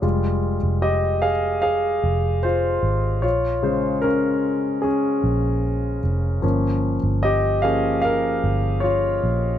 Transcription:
<<
  \new Staff \with { instrumentName = "Grand piano" } { \time 4/4 \key f \minor \tempo 4 = 75 r4 <g' ees''>8 <aes' f''>8 <aes' f''>4 <f' c''>4 | <f' des''>4 <des' bes'>4 <des' aes'>4. r8 | r4 <g' ees''>8 <aes' f''>8 <bes' f''>4 <f' des''>4 | }
  \new Staff \with { instrumentName = "Grand piano" } { \time 4/4 \key f \minor <g aes f'>8 r2. r8 | r8 <des aes c''>2.~ <des aes c''>8 | <f bes des'>8 r4 <f bes des'>8 r2 | }
  \new Staff \with { instrumentName = "Fingered electric bass" } { \clef bass \time 4/4 \key f \minor f,,8. f,,4.~ f,,16 f,,4 aes,,8 | bes,,2~ bes,,8 bes,,4 f,,8 | g,,8. g,,4.~ g,,16 g,,4 bes,,8 | }
>>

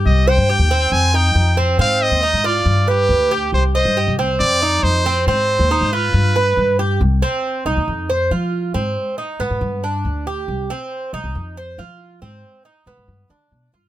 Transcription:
<<
  \new Staff \with { instrumentName = "Trumpet" } { \time 4/4 \key c \minor \tempo 4 = 138 ees''8 g''4. aes''8 g''4 r8 | f''8 ees''4 d''4 g'4. | c''8 ees''4 r8 d''4 c''4 | c''4. b'2 r8 |
r1 | r1 | r1 | r1 | }
  \new Staff \with { instrumentName = "Cuban tres" } { \time 4/4 \key c \minor g'8 c''8 g'8 c'4 ees'4 c'8 | c'4 ees'8 f'4 b'4 g'8~ | g'8 c''8 g'8 c'4 ees'4 c'8 | c'4 ees'8 f'4 b'4 g'8 |
r8 c'4 ees'4 c''8 f'4 | c'4 ees'8 b4 d'4 g'8~ | g'8 c'4 ees'4 c''8 f'4 | c'4 ees'8 b4 d'4 f'8 | }
  \new Staff \with { instrumentName = "Upright bass" } { \clef bass \time 4/4 \key c \minor c,8. g,8 ees,8. f,4 f,4 | aes,8. ees,8 aes,8. g,4 d,4 | c,8. g,8 c,8. f,4 f,4 | aes,8. ees,8 aes,8. g,4 g,4 |
c,8 r4 c,16 ees,16 f,4 f4 | aes,8 r4 aes,16 aes,16 g,4 d,4 | c,8 r4 c,16 c,16 f,4 f4 | aes,8 r4 aes,16 aes,16 g,8 d8 b,8 g,8 | }
>>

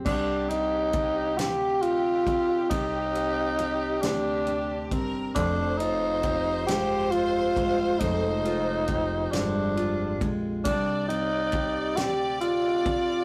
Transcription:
<<
  \new Staff \with { instrumentName = "Violin section" } { \time 6/8 \key c \minor \tempo 4. = 45 g'2.~ | g'2~ g'8 bes'8 | c''2.~ | c''2~ c''8 r8 |
d''2. | }
  \new Staff \with { instrumentName = "Tenor saxophone" } { \time 6/8 \key c \minor d'8 ees'4 g'8 f'4 | ees'4. d'4 r8 | d'8 ees'4 g'8 f'4 | ees'4. d'4 r8 |
d'8 ees'4 g'8 f'4 | }
  \new Staff \with { instrumentName = "Steel-string acoustic guitar" } { \time 6/8 \key c \minor c8 d'8 g'8 c'4 c'8 | c4 g'8 c'8 d'8 c'8 | f,8 f'8 g'8 aes8 f'8 aes8 | f,8 f'8 g'8 aes8 f'8 aes8 |
c8 c'16 r16 g'8 c'4 c'8 | }
  \new Staff \with { instrumentName = "Upright bass" } { \clef bass \time 6/8 \key c \minor c,4. d,4 bes,,8 | c,4. d,4 g,,8 | f,,4. g,,4 g,,8 | f,,4. g,,4 bes,,8 |
c,4. d,4 bes,,8 | }
  \new DrumStaff \with { instrumentName = "Drums" } \drummode { \time 6/8 <cymc bd>8 cymr8 <bd cymr>8 <cymr sn>8 cymr8 <bd cymr>8 | <bd cymr>8 cymr8 cymr8 <cymr sn>8 cymr8 <bd cymr>8 | <bd cymr>8 cymr8 <bd cymr>8 <cymr sn>8 cymr8 <bd cymr>8 | <bd cymr>8 cymr8 <bd cymr>8 <cymr sn>8 cymr8 <bd cymr>8 |
<bd cymr>8 cymr8 <bd cymr>8 <cymr sn>8 cymr8 <bd cymr>8 | }
>>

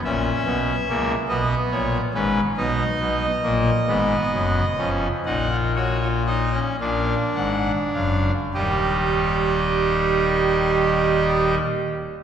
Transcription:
<<
  \new Staff \with { instrumentName = "Pipe organ" } { \time 6/8 \key b \major \tempo 4. = 41 << { e''4. dis''8 cis''8 b'8 | \key bes \phrygian dis''2. | ges''8 des''8 ees''8 f''8 ges''8 f''8 | <ees g ees''>2. | } \\ { cis'4 ais8 b4 cis'8 | dis'4 bes8 ces'4 des'8 | ees'16 f'16 ges'16 f'16 ees'16 des'16 d'4. | g'2. | } >> }
  \new Staff \with { instrumentName = "Pipe organ" } { \clef bass \time 6/8 \key b \major <ais,, ais,>8 <b,, b,>8 <cis, cis>8 <b,, b,>8 <ais,, ais,>8 <gis,, gis,>8 | \key bes \phrygian <b,, b,>8 <b,, b,>8 <bes,, bes,>8 <aes,, aes,>8 <ges,, ges,>8 <f,, f,>8 | <bes,, bes,>4. <bes,, bes,>8 <aes,, aes,>8 <ges,, ges,>8 | <ees,, ees,>2. | }
>>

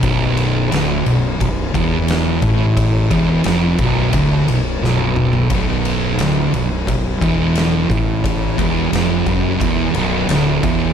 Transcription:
<<
  \new Staff \with { instrumentName = "Distorted electric guitar" } { \clef bass \time 4/4 \key b \minor \tempo 4 = 88 b,,4 d,8 b,,8 b,,8 e,4 a,8~ | a,8 e,8 eis,8 b,,8 d,8 b,,8 b,,4 | b,,4 d,8 b,,8 b,,8 e,4 a,8~ | a,8 e,8 eis,8 fis,8 e,8 b,,8 d,8 e,8 | }
  \new Staff \with { instrumentName = "Distorted electric guitar" } { \clef bass \time 4/4 \key b \minor b,,4 d,8 b,,8 b,,8 e,4 a,8~ | a,8 e,8 eis,8 b,,8 d,8 b,,8 b,,4 | b,,4 d,8 b,,8 b,,8 e,4 a,8~ | a,8 e,8 eis,8 fis,8 e,8 b,,8 d,8 e,8 | }
  \new Staff \with { instrumentName = "Fingered electric bass" } { \clef bass \time 4/4 \key b \minor b,,,4 d,,8 b,,,8 b,,,8 e,,4 a,,8~ | a,,8 e,,8 eis,,8 b,,,8 d,,8 b,,,8 b,,,4 | b,,,4 d,,8 b,,,8 b,,,8 e,,4 a,,8~ | a,,8 e,,8 eis,,8 fis,,8 e,,8 b,,,8 d,,8 e,,8 | }
  \new DrumStaff \with { instrumentName = "Drums" } \drummode { \time 4/4 <bd cymr>8 cymr8 <cymr sn>8 cymr8 <bd cymr>8 <bd cymr>8 <cymr sn>8 <bd cymr>8 | <bd cymr>8 <bd cymr>8 <cymr sn>8 <bd cymr>8 <bd cymr>8 cymr8 sn16 tommh16 toml16 tomfh16 | <bd cymr>8 cymr8 <cymr sn>8 cymr8 <bd cymr>8 <bd cymr>8 <cymr sn>8 <bd cymr>8 | <bd cymr>8 <bd cymr>8 <cymr sn>8 <bd cymr>8 <bd cymr>8 cymr8 <cymr sn>8 <bd cymr>8 | }
>>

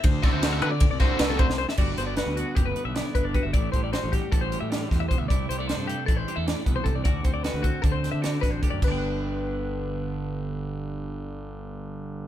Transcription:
<<
  \new Staff \with { instrumentName = "Clean electric guitar" } { \time 9/8 \key g \major \tempo 4. = 102 c''8 d''16 c''8 e''16 b'16 d''8 d''16 c''8 b'16 a'16 c''8 c''16 e''16 | d''8 c''16 d''16 b'8 fis'8 g'16 b'8 e''16 d''8 b'16 d''16 b'16 e''16 | d''8 c''16 d''16 c''8 g'8 a'16 c''8 e''16 d''8 c''16 e''16 c''16 e''16 | d''8 c''16 d''16 c''8 g'8 a'16 c''8 e''16 d''8 b'16 c''16 a'16 d''16 |
d''8 c''16 d''16 b'8 fis'8 a'16 c''8 e''16 d''8 b'16 c''16 a'16 d''16 | <b' d'' g''>1~ <b' d'' g''>8~ | <b' d'' g''>1~ <b' d'' g''>8 | }
  \new Staff \with { instrumentName = "Overdriven electric guitar" } { \time 9/8 \key g \major r8 <d a c' fis'>8 <d a c' fis'>8 r4 <d a c' fis'>8 <d a c' fis'>8 r4 | r1 r8 | r1 r8 | r1 r8 |
r1 r8 | r1 r8 | r1 r8 | }
  \new Staff \with { instrumentName = "Clean electric guitar" } { \time 9/8 \key g \major << { r1 r8 | fis'8 b8 fis'8 b4 b8 e'8 d'8 fis'8 | e'8 g8 fis'8 g4 g2 | e'8 g16 a16 d'8 a4 g16 a4.~ a16 |
fis'8 c'8 fis'8 c'4 c'8 fis'8 d'8 g'8 | <d b d'>1~ <d b d'>8~ | <d b d'>1~ <d b d'>8 | } \\ { r1 r8 | g,2 d2 g,8 | a,2 e4 g,8 a,8 b,8 | c2 e4 a,8 b,8 c8 |
d,2 d2 d,8 | g,1~ g,8~ | g,1~ g,8 | } >> }
  \new Staff \with { instrumentName = "Fingered electric bass" } { \clef bass \time 9/8 \key g \major d,8 r16 d,8. d8. c,8. c,8. c,8 r16 | g,,8 g,,8. d,8 r16 fis,,8 r16 b,,8 r16 g,,8. g,,16 | a,,8 a,,8. a,,8 r16 a,,8. a,8. e,8 r16 d,16 | c,8 c,8. g,8 r16 a,,8 r16 e,8 r16 c,8. c,16 |
d,8 d,8. d,8 r16 d,8. d8. a,,8 r16 fis,16 | g,,1~ g,,8~ | g,,1~ g,,8 | }
  \new DrumStaff \with { instrumentName = "Drums" } \drummode { \time 9/8 <bd cymr>8 <bd cymr sn>8 <cymr sn>8 cymr8 <bd cymr>8 <bd cymr sn>8 <cymr sn>8 <bd cymr>16 sn8 sn16 | <cymc bd>8 <hh sn>8 <hh sn>8 hh8 <hh bd>8 hh8 <hh sn>8 <hh bd>8 <hh bd>8 | <hh bd>8 <hh bd>8 <hh sn>8 <hh bd sn>8 <hh bd>8 hh8 <hh sn>8 <hh bd sn>8 <hh bd>8 | <hh bd>8 hh8 <hh sn>8 hh8 <hh bd>8 hh8 <hh sn>8 <hh bd>8 <hh bd>8 |
<hh bd>8 <hh bd>8 <hh sn>8 <hh bd>8 <hh bd>8 <hh sn>8 <hh sn>8 <hh bd sn>8 <hh bd>8 | <cymc bd>4 r4 r4 r4. | r4 r4 r4 r4. | }
>>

